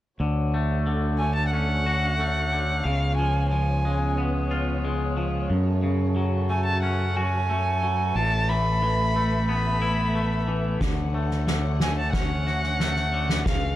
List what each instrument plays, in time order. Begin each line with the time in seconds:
0.20 fingered electric bass D2, string section D3 A3 F#4 C#5, clean electric guitar D3
0.54 clean electric guitar A3
0.87 clean electric guitar D3
1.19 clean electric guitar A3, violin G#5
1.35 violin A5
1.51 clean electric guitar C#4, violin F#5
1.86 clean electric guitar F#4
2.20 clean electric guitar A3
2.52 clean electric guitar D3
2.84 fingered electric bass C#2, clean electric guitar C#3, string section C#3 B3 F4, violin F5
3.17 clean electric guitar F3, violin G#5
3.50 clean electric guitar F3, violin G#5
3.85 clean electric guitar G#3
4.18 clean electric guitar B3
4.51 clean electric guitar F4
4.84 clean electric guitar G#3
5.17 clean electric guitar F3
5.50 clean electric guitar F#2, fingered electric bass F#2, string section F#3 F#4 A4
5.83 clean electric guitar C#3
6.16 clean electric guitar F#3
6.50 clean electric guitar A3, violin G#5
6.66 violin A5
6.82 clean electric guitar C#4, violin F#5
7.16 clean electric guitar F#4, violin G#5
7.50 clean electric guitar A3
7.83 clean electric guitar F#3
8.15 fingered electric bass A1, clean electric guitar A2, string section A3 B4 E5, violin A5
8.49 clean electric guitar E3, violin B5
8.83 clean electric guitar E3
9.16 clean electric guitar A3
9.49 clean electric guitar B3, violin B5
9.82 clean electric guitar E4
10.15 clean electric guitar A3
10.48 clean electric guitar E3
10.81 fingered electric bass D2, clean electric guitar D3, string section D3 C#5 F#5, kick, snare
11.14 clean electric guitar A3
11.31 snare
11.47 clean electric guitar D3, snare
11.80 clean electric guitar A3, violin G#5, snare
11.99 violin A5
12.13 clean electric guitar C#4, violin F#5, kick, snare
12.47 clean electric guitar F#4, snare
12.63 snare
12.80 clean electric guitar A3, snare
12.96 snare
13.13 clean electric guitar D3
13.29 snare
13.46 fingered electric bass C#2, clean electric guitar C#3, string section C#3 C#4 B4 F5, violin F5, kick, snare